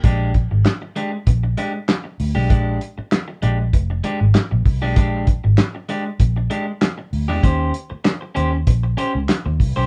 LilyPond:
<<
  \new Staff \with { instrumentName = "Clean electric guitar" } { \time 4/4 \key bes \mixolydian \tempo 4 = 97 <aes d' g'>8 r4 <aes d' g'>16 r8. <aes d' g'>16 r4 <aes d' g'>16 | <aes d' g'>8 r4 <aes d' g'>16 r8. <aes d' g'>16 r4 <aes d' g'>16 | <aes d' g'>8 r4 <aes d' g'>16 r8. <aes d' g'>16 r4 <aes d' g'>16 | <des' g' c''>8 r4 <des' g' c''>16 r8. <des' g' c''>16 r4 <des' g' c''>16 | }
  \new Staff \with { instrumentName = "Fingered electric bass" } { \clef bass \time 4/4 \key bes \mixolydian bes,,8. aes,,16 r4 bes,,8 r4 d,16 ces,16 | bes,,8 r4 bes,,8 f,,8 r16 aes,,16 r16 bes,,16 c,16 ces,16 | bes,,8. aes,,16 r4 bes,,8 r4 d,16 e,16 | ees,8 r4 ees,8 bes,,8 r16 des,16 r16 ees,16 c,16 ces,16 | }
  \new DrumStaff \with { instrumentName = "Drums" } \drummode { \time 4/4 <hh bd>8 <hh bd>8 <hc hh sn>8 hh8 <hh bd>8 hh8 <hc hh sn>8 hho8 | <hh bd>8 hh8 <hc hh sn>8 hh8 <hh bd>8 hh8 <hc hh sn>8 <hho bd>8 | <hh bd>8 <hh bd>8 <hc hh sn>8 hh8 <hh bd>8 hh8 <hc hh sn>8 hho8 | <hh bd>8 hh8 <hc hh sn>8 hh8 <hh bd>8 hh8 <hc hh sn>8 <hho bd>8 | }
>>